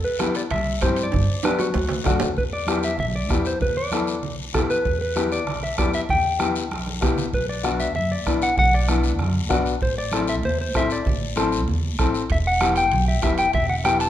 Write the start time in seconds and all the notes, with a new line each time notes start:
0.04 B4
0.19 B3 E4 G4, bombo rim, high conga, high timbale, short guiro
0.35 D5, high timbale, short guiro
0.50 C2 E5, bombo rim, high conga, low conga, high timbale, long guiro
0.81 G2 C4 E4 G4 C5, bombo low, bombo rim, high conga, high timbale, low timbale, short guiro
0.96 high timbale, short guiro
1.03 D5
1.12 G1, bombo low, high conga, low conga, high timbale, long guiro
1.43 B3 D4 G4 B4, bombo rim, high conga, high timbale, short guiro
1.59 F#4, high conga, low timbale, short guiro
1.74 D2, high conga, low timbale, long guiro
1.89 low conga, low timbale
2.04 F#2 A3 D4 F#4, bombo low, bombo rim, low conga, low timbale, short guiro
2.20 E2, low conga, low timbale, short guiro
2.36 E2 B4, bombo low, high conga, long guiro
2.53 D5
2.67 B3 E4 G4, bombo rim, high conga, short guiro
2.83 E5, short guiro
2.98 B1 E5, high conga, low conga, long guiro
3.16 D5
3.29 E2 B3 E4 G4, bombo low, bombo rim, high conga, short guiro
3.45 C5, short guiro
3.60 E2 B4, bombo low, high conga, low conga, long guiro
3.77 D5
3.92 B3 E4 A4, bombo rim, high conga, short guiro
4.07 short guiro
4.23 B1, high conga, low conga, long guiro
4.54 E2 B3 E4 G4 A4, bombo low, bombo rim, high conga, low conga, short guiro
4.70 B4, short guiro
4.85 E2, bombo low, high conga, long guiro
5.01 B4
5.15 B3 E4 G4, bombo rim, high conga, short guiro
5.32 D5, short guiro
5.47 B1, bombo rim, high conga, low conga, long guiro
5.63 E5
5.78 E2 B3 E4 G4 D5, bombo low, bombo rim, high conga, short guiro
5.93 E5, short guiro
6.09 E2 G5, bombo low, high conga, low conga, long guiro
6.39 B3 E4 G4, bombo rim, high conga, short guiro
6.56 short guiro
6.71 B1, bombo rim, high conga, long guiro
6.87 high conga
7.01 C2 B3 E4 G4, bombo low, bombo rim, low conga, short guiro
7.17 low conga, short guiro
7.33 B1 B4, bombo low, high conga, long guiro
7.49 D5
7.63 B3 D4 F#4, bombo rim, high conga, short guiro
7.80 E5, short guiro
7.95 F#2 E5, high conga, low conga, long guiro
8.12 D5
8.26 B1 B3 D4 E4, bombo low, bombo rim, high conga, short guiro
8.42 F#5, short guiro
8.57 B1 F#5, bombo low, high conga, low conga, long guiro
8.74 D5
8.88 B3 D4 E4, bombo rim, high conga, short guiro
9.03 short guiro
9.19 F#2, bombo rim, high conga, low conga, long guiro
9.49 B1 B3 D4 F#4, bombo low, bombo rim, high conga, short guiro
9.66 short guiro
9.81 A1 C5, bombo low, high conga, long guiro
9.98 D5
10.12 C4 E4 A4, bombo rim, high conga, short guiro
10.27 E5, short guiro
10.43 E2 C5, high conga, low conga, long guiro
10.61 C5
10.74 A1 C4 E4 A4 E5, bombo low, bombo rim, high conga, short guiro
10.90 D5, short guiro
11.05 A1, bombo low, high conga, low conga, long guiro
11.36 C4 E4 A4, bombo rim, high conga, short guiro
11.52 short guiro
11.68 E2, high conga, low conga, long guiro
11.99 A1 C4 E4 A4, bombo low, bombo rim, high conga, short guiro
12.14 short guiro
12.30 E1 E5, bombo low, high conga, high timbale, long guiro
12.47 F#5
12.60 B3 E4 G4, bombo rim, high conga, high timbale, short guiro
12.76 G5, high timbale, short guiro
12.92 B1, high conga, low conga, high timbale, long guiro
13.08 E5
13.22 E1 B3 E4 G4 E5, bombo low, bombo rim, high conga, high timbale, short guiro
13.38 G5, high timbale, short guiro
13.53 E1 E5, bombo low, high conga, low conga, high timbale, long guiro
13.69 F#5
13.84 B3 E4 G4 G5, bombo rim, high conga, high timbale, short guiro
14.00 A5, high timbale, short guiro